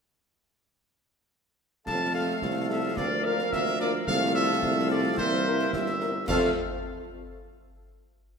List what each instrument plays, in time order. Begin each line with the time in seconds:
1.86 tuba F2, trombone section F3 A3, woodwind section A4 F5, trumpet section A5, concert bass drum, snare, crash
2.14 french horn section C4 F4 A4, trumpet section F5
2.42 tuba C2, concert bass drum, snare
2.69 french horn section C4 F4 A4, trumpet section E5
2.97 tuba D2, trombone section A#3, woodwind section A#4, trumpet section D5, concert bass drum, snare
3.25 french horn section A#3 F4 A#4, trumpet section F5
3.39 snare
3.52 tuba D2, trumpet section E5, concert bass drum, snare
3.66 snare
3.80 french horn section A#3 F4 A#4, trumpet section D5, snare
4.07 tuba C2, trombone section F3 A3, woodwind section A4 F5, trumpet section F5, concert bass drum, snare
4.34 french horn section C4 F4 A4, trumpet section E5
4.63 tuba C2, concert bass drum, snare
4.90 french horn section C4 F4 A4, trumpet section D5
5.17 tuba C2, trombone section E3 A#3, woodwind section A#4 E5, trumpet section C5, concert bass drum, snare
5.46 french horn section C4 E4 A#4
5.59 snare
5.73 tuba G1, trumpet section E5, concert bass drum, snare
5.86 snare
6.00 french horn section C4 E4 A#4, snare
6.28 tuba F2, trombone section F3 A3, french horn section C4 F4 A4, woodwind section A4 F5, trumpet section F5, concert bass drum, snare, crash